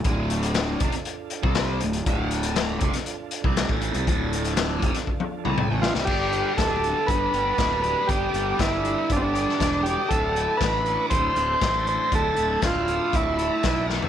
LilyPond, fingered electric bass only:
\new Staff \with { instrumentName = "Fingered electric bass" } { \clef bass \time 4/4 \key d \dorian \tempo 4 = 119 d,,4. f,,16 r4 c,8. d,,8 | d,,4. f,,16 r4 c,8 a,,8 c,16 | d,,4. f,,16 r4 c,8 a,,8 c,16 | g,,4 d,,4 g,,8 g,,8 d,,4 |
g,,8 g,,8 g,,4 g,,4 e,,4 | d,,4 a,,4 d,,8 d,,8 a,,4 | d,,8 d,,8 d,,4 d,,4 b,,4 | }